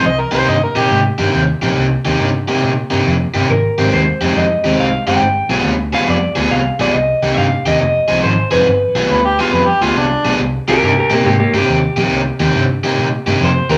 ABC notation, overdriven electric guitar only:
X:1
M:4/4
L:1/8
Q:"Swing" 1/4=139
K:Cm
V:1 name="Overdriven electric guitar"
z [C,B,EG] z [C,B,EG] z [C,B,EG] z [C,B,EG] | z [C,B,EG] z [C,B,EG] z [C,B,EG] z [C,B,EG] | z [A,CEG] z [A,CEG] z [A,CEG] z [A,CEG] | z [G,=B,FA] z [G,B,FA] z [G,B,FA] z [G,B,FA] |
z [C,B,EG] z [C,B,EG] z [F,CEA] z [F,CEA] | z [G,=B,FA] z [G,B,FA] z [G,B,FA] z [G,B,FA] | z [C,B,EG] z [C,B,EG] z [C,B,EG] z [C,B,EG] | z [C,B,EG] z [C,B,EG] z [C,B,EG] z [C,B,EG] |]